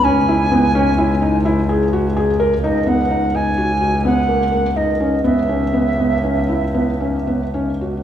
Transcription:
<<
  \new Staff \with { instrumentName = "Flute" } { \time 11/8 \key b \major \tempo 4 = 127 gis''2. r2 r8 | dis''8 fis''4 gis''4. fis''4. dis''4 | e''1~ e''8 r4 | }
  \new Staff \with { instrumentName = "Felt piano" } { \time 11/8 \key b \major cis'8 e'8 b8 cis'8 e'8 dis'8 e'8 gis'8 fis'8 gis'8 ais'8 | dis'8 b8 dis'8 dis'8 fis'8 fis'8 b8 ais8 ais8 dis'8 cis'8 | b8 cis'8 b8 b8 cis'8 e'8 b8 cis'8 b8 cis'8 fis'8 | }
  \new Staff \with { instrumentName = "Double bass" } { \clef bass \time 11/8 \key b \major cis,1~ cis,4. | cis,1~ cis,4. | cis,1~ cis,4. | }
>>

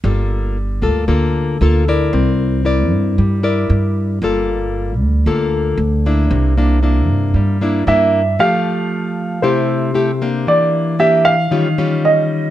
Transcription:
<<
  \new Staff \with { instrumentName = "Grand piano" } { \time 4/4 \key f \major \tempo 4 = 115 r1 | r1 | r1 | r2. e''4 |
f''2 c''2 | d''4 e''8 f''4. ees''4 | }
  \new Staff \with { instrumentName = "Nylon-string guitar" } { \time 4/4 \key f \major << { <bes f' a'>4 r8 <bes f' a'>8 <bes f' a'>4 <bes f' a'>8 <e' bes' d''>8~ | <e' bes' d''>4 <e' bes' d''>4. <e' bes' d''>4. | <bes f' a'>4. r8 <bes f' a'>4 r8 <bes d' e'>8~ | <bes d' e'>8 <bes d' e'>8 <bes d' e'>4. <bes d' e'>8 <bes d' e'>8 r8 |
<a g'>2 <a e' g'>4 <a e' g'>8 <bes d' g'>8~ | <bes d' g'>4 <bes d' g'>8 r8 <g des' f'>8 <g des' f'>4. | } \\ { g2 d2 | c'2 g2 | g2 d2 | c2 g2 |
f2 c2 | e2 ees2 | } >> }
  \new Staff \with { instrumentName = "Upright bass" } { \clef bass \time 4/4 \key f \major g,,4. d,8 d,4 d,4 | c,4. g,8 g,4 g,4 | g,,4. d,8 d,4 d,4 | c,4. g,8 g,4 g,4 |
r1 | r1 | }
>>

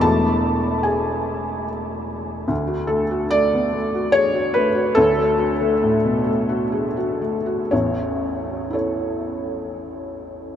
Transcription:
<<
  \new Staff \with { instrumentName = "Felt piano" } { \time 3/4 \key d \lydian \tempo 4 = 71 << { <a a''>4 <gis' gis''>4 r4 | r8 a'8 d''4 cis''8 b'8 | a'2~ a'8 r8 | cis''2. | } \\ { r2. | r2. | r2. | r4 <e' a' cis''>2 | } >> }
  \new Staff \with { instrumentName = "Felt piano" } { \time 3/4 \key d \lydian <e,, e, b, gis e' fis'>2. | d,16 fis'16 a16 fis'16 a16 b16 a16 fis'16 gis'16 fis'16 a16 fis'16 | d,16 a16 fis'16 a16 a,16 b,16 a16 fis'16 gis'16 fis'16 a16 fis'16 | <a,, e,>2. | }
>>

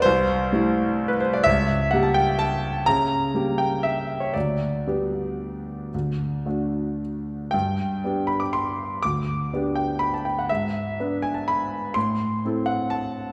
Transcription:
<<
  \new Staff \with { instrumentName = "Grand piano" } { \time 3/4 \key g \major \tempo 4 = 123 c''2~ c''16 b'16 c''16 d''16 | e''4 fis''16 a''16 g''8 a''4 | ais''4. g''8 e''8. cis''16 | d''2.~ |
d''2 r4 | g''4. b''16 d'''16 c'''4 | d'''4. g''8 b''16 a''16 g''16 fis''16 | e''4. gis''16 a''16 b''4 |
c'''4. fis''8 a''4 | }
  \new Staff \with { instrumentName = "Grand piano" } { \time 3/4 \key g \major c,4 <g a e'>2 | cis,4 <g ais g'>2 | cis4 <g ais g'>2 | d,4 <g b g'>2 |
d,4 <a d' fis'>2 | g,4 <b d' g'>2 | d,4 <b d' g'>2 | gis,4 <b d' b'>2 |
a,4 <c' e' a'>2 | }
>>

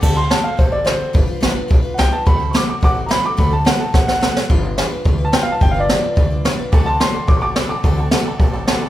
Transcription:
<<
  \new Staff \with { instrumentName = "Upright piano" } { \time 4/4 \key d \mixolydian \tempo 4 = 215 a''8 c'''8 a''8 f''8 c''8 d''8 c''4 | r2. <fis'' g''>8 a''8 | b''4 <cis''' d'''>8 d'''8 <fis'' d'''>8 r8 <bes'' b''>8 d'''8 | b''8 a''8 fis''8 a''8 fis''8 fis''4. |
r2 \tuplet 3/2 { r4 a''8 g''8 f''8 a''8 } | \tuplet 3/2 { g''8 f''8 d''8~ } d''2~ d''8 r8 | r8 a''8 c'''4 d'''8 <cis''' d'''>4 d'''8~ | d'''4. r2 r8 | }
  \new Staff \with { instrumentName = "Honky-tonk piano" } { \time 4/4 \key d \mixolydian r1 | r1 | r1 | r1 |
r1 | r1 | <d'' fis'' a''>8 <d'' fis'' c'''>8 <fis'' a''>8 <d'' fis'' a''>8 <d'' fis'' c'''>8 <d'' fis'' a''>8 <d'' fis'' b''>8 <d'' fis'' a''>8 | <d'' fis'' a''>8 <d'' fis'' a''>8 <d'' fis'' a''>8 <d'' fis'' a''>8 <d'' fis'' a''>8 <d'' fis'' a''>8 <d'' fis'' a''>8 <d'' fis'' a''>8 | }
  \new Staff \with { instrumentName = "Steel-string acoustic guitar" } { \time 4/4 \key d \mixolydian <d a c' fis' a'>8 <c' fis' a'>8 <d a c' fis' a'>8 <c' fis' a'>8 <a c' fis' a'>8 <c' fis' a'>8 <d a c' fis' a'>8 <c' fis' a'>8 | <g d' f' b'>8 <d' f' b'>8 <g d' f' b'>8 <d' f' b'>8 <g d' f' b'>8 <d' f' b'>8 <g d' f' b'>8 <d' f' b'>8 | <d a c' fis' a'>8 <c' fis' a'>8 <d a c' fis' a'>8 <c' fis' a'>8 <a c' fis' a'>8 <c' fis' a'>8 <d a c' fis' a'>8 <c' fis' a'>8 | <d a c' fis' a'>8 <c' fis' a'>8 <d a c' fis' a'>8 <c' fis' a'>8 <a c' fis' a'>8 <c' fis' a'>8 <d a c' fis' a'>8 <c' fis' a'>8 |
<g d' f' b'>8 <d' f' b'>8 <g d' f' b'>8 <d' f' b'>8 <g d' f' b'>8 <d' f' b'>8 <g d' f' b'>8 <d' f' b'>8 | <g d' f' b'>8 <d' f' b'>8 <g d' f' b'>8 <d' f' b'>8 <g d' f' b'>8 <d' f' b'>8 <g d' f' b'>8 <d' f' b'>8 | <d a c' fis' a'>8 <c' fis' a'>8 <d a c' fis' a'>8 <c' fis' a'>8 <a c' fis' a'>8 <c' fis' a'>8 <d a c' fis' a'>8 <c' fis' a'>8 | <d a c' fis' a'>8 <c' fis' a'>8 <d a c' fis' a'>8 <c' fis' a'>8 <a c' fis' a'>8 <c' fis' a'>8 <d a c' fis' a'>8 <c' fis' a'>8 | }
  \new Staff \with { instrumentName = "Upright bass" } { \clef bass \time 4/4 \key d \mixolydian d,4. r8 a,,4. r8 | g,,8 r8 a,,8 r8 b,,8 r8 c,8 r8 | d,4. r8 a,,4. r8 | d,4. r8 a,,4. r8 |
g,,4. r8 d,4. r8 | g,,4. r8 d,4. r8 | d,4. r8 a,,4. r8 | d,4. r8 a,,4. r8 | }
  \new DrumStaff \with { instrumentName = "Drums" } \drummode { \time 4/4 <cymc bd>4 <hho sn>4 <hho bd>4 <hho sn>4 | <hho bd>4 sn4 <hho bd>4 sn4 | <hho bd>4 <hho sn>4 <hho bd>4 <hho sn>4 | <hho bd>4 <hho sn>4 <bd sn>8 sn8 sn8 sn8 |
<hho bd>4 <hho sn>4 <hho bd>4 <hho sn>4 | <hho bd>4 <hho sn>4 <hho bd>4 <hho sn>4 | <hho bd>4 <hho sn>4 <hho bd>4 <hho sn>4 | <hho bd>4 <hho sn>4 <hho bd>4 <hho sn>4 | }
>>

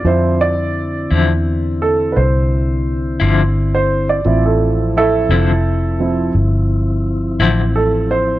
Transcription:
<<
  \new Staff \with { instrumentName = "Upright piano" } { \time 12/8 \key d \minor \tempo 4. = 57 << { c''8 d''4 r4 a'8 <b' c''>2~ <b' c''>16 c''8 d''16~ | d''16 a'8. <e' a'>2 r2 a'8 c''8 | } \\ { <f c' e'>8 r1 r4. | <f c' e'>4. r4 <f c' e'>8 r2. | } >> }
  \new Staff \with { instrumentName = "Tonewheel organ" } { \time 12/8 \key d \minor <d c' e'>1. | <f c' e'>1. | }
  \new Staff \with { instrumentName = "Clean electric guitar" } { \clef bass \time 12/8 \key d \minor r4. <d f c' e'>8 r2 r8 <d f c' e'>8 r4 | r4. <d f c' e'>8 r2 r8 <d f c' e'>8 r4 | }
  \new Staff \with { instrumentName = "Fingered electric bass" } { \clef bass \time 12/8 \key d \minor f,4. e,4. c,4. g,,4. | a,,4. f,,4. g,,4. a,,4. | }
>>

